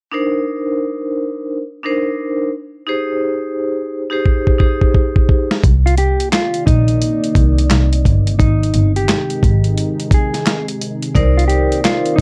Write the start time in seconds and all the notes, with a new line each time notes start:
0.12 D4 D#4 A#4 C5
1.83 D4 D#4 A#4 C5
2.87 D#4 G4 G#4 C5
4.10 D#4 G4 G#4 C5
4.26 kick
4.47 kick
4.58 D#4 G4 G#4 C5, kick
4.81 kick
4.94 kick
5.16 kick
5.29 kick
5.51 snare
5.63 C2 C3 D#3 A#3 D5, kick, closed hi-hat
5.86 F4, closed hi-hat
5.98 G4, closed hi-hat
6.20 closed hi-hat
6.32 F4, finger snap, snare, clap, closed hi-hat
6.54 closed hi-hat
6.66 A#1 D#4, kick, closed hi-hat
6.88 closed hi-hat
7.02 closed hi-hat
7.24 closed hi-hat
7.35 C2, kick, closed hi-hat
7.58 closed hi-hat
7.70 C2, finger snap, snare, clap, closed hi-hat
7.93 closed hi-hat
8.05 G1, kick, closed hi-hat
8.27 closed hi-hat
8.38 G#1 D#3 G#3 D#4, kick, closed hi-hat
8.63 closed hi-hat
8.74 G1, closed hi-hat
8.96 G4, closed hi-hat
9.08 finger snap, snare, clap, closed hi-hat
9.30 closed hi-hat
9.43 G#1, kick, closed hi-hat
9.64 closed hi-hat
9.78 closed hi-hat
10.00 closed hi-hat
10.11 G#4, kick, closed hi-hat
10.34 snare, closed hi-hat
10.46 finger snap, snare, clap, closed hi-hat
10.68 closed hi-hat
10.81 closed hi-hat
11.03 closed hi-hat
11.14 C2 D#3 A#3 D#4 A#4 C5 D5, kick, closed hi-hat
11.37 F4, closed hi-hat
11.48 G4, closed hi-hat
11.72 closed hi-hat
11.84 F4, finger snap, snare, clap, closed hi-hat
12.06 closed hi-hat
12.16 D#4